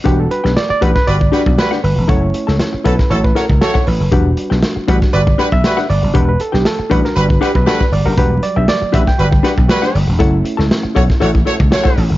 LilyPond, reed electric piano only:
\new Staff \with { instrumentName = "Reed electric piano" } { \time 4/4 \key e \dorian \tempo 4 = 118 << { g'16 a'16 b'8 d''16 d''16 b'16 b'16 d''4. b'8 | cis''4. b'8 cis''16 b'16 ais'8 a'16 cis''16 b'8~ | b'4 r4 d''8. e''8. d''8 | b'16 b'16 a'16 g'16 a'8 b'16 ais'16 b'8 g'16 b'16 a'16 b'16 d''16 ais'16 |
b'8 d''16 e''16 d''8 e''16 g''2~ g''16~ | g''16 r2. r8. | } \\ { <g d' fis'>8 r2 <g d' fis'>8 r4 | <a cis' e'>1 | <g d' fis'>4. <g d' fis'>8 r2 | r4. <g d' fis'>4. r4 |
<fis g d' fis'>1 | <a cis' e'>1 | } >> }